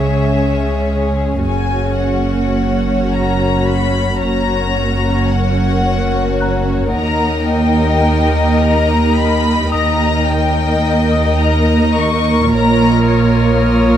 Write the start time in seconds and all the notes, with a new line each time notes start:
Already playing: C#2 C#3 G#3 C#4 G#4 C#5 E5 G#5 C#6
0.01 D#6
1.47 F#1 F#2 A#3 C#4 F#4 C#5 F#5 G#5
2.02 F#5
3.12 A#5
3.67 B5
4.21 F#1 F#2 A#3 C#4 F#4 A#4 C#5 F#5 A#5
5.31 F#5
6.41 A#5 F#6
6.95 D#2 A#3 D#4 G4 A#4 D#5 G5 A#5
7.51 G5
8.62 A#5
9.17 B5
9.72 D#2 A#3 D#4 A#4 D#5 A#5 D#6
10.29 G5
11.12 D#6
11.40 A#5
11.97 C#6
12.52 A#1 A#2 F4 C#5 F5 A#5 C#6 D#6 F6
13.09 C#5